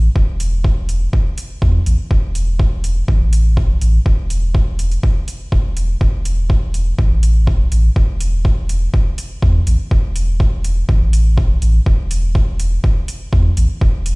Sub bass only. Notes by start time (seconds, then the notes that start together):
0.16 E1
1.62 E2
1.86 A1
2.11 E1
3.08 A1
3.81 A1
4.06 E1
5.52 E1
6.01 E1
6.99 A1
7.72 A1
7.96 E1
9.42 E2
9.67 A1
9.91 E1
10.89 A1
11.62 A1
11.86 E1
13.33 E2
13.57 A1
13.81 E1